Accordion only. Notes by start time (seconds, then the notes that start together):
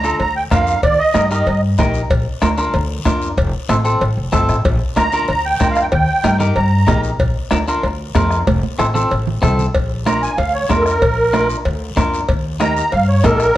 Already playing: A#5
0.19 A#5
0.36 G5
0.52 F5
0.83 D5
0.99 D#5
1.32 D#5
4.97 A#5
5.29 A#5
5.45 G5
5.71 F5
5.82 G5
5.92 G5
6.56 A#5
10.06 A#5
10.22 G#5
10.38 F5
10.54 C#5
10.70 A#4
10.81 A4
10.86 A#4
12.60 A#5
12.76 A#5
12.92 F5
13.09 C#5
13.24 A#4
13.36 A4
13.41 A#4